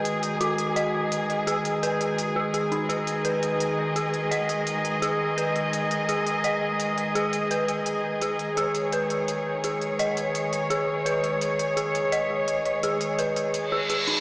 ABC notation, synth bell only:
X:1
M:4/4
L:1/8
Q:"Swing 16ths" 1/4=169
K:G#m
V:1 name="Synth bell"
B2 F z d4 | G z B3 G G D | G z B4 G z | d4 G z B2- |
B2 G z d4 | G z B4 G z | G z B4 G z | d4 G z B2- |
B2 G z d4 | G z B3 G G D |]